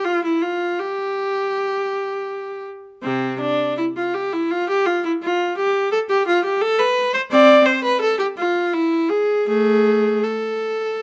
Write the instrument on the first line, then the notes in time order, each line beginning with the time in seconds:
viola
0.05 F4
0.24 E4
0.42 F4
0.80 G4
3.03 C3 C4
3.40 D4
3.78 E4
3.97 F4
4.14 G4
4.33 E4
4.51 F4
4.69 G4
4.86 F4
5.05 E4
5.22 F4
5.57 G4
5.92 A4
6.10 G4
6.27 F4
6.44 G4
6.62 A4
6.79 B4
7.14 C5
7.31 C4 D5
7.66 C5
7.84 B4
8.01 A4
8.19 G4
8.38 F4
8.73 E4
9.10 G#4
9.48 A3 G#4
10.24 A4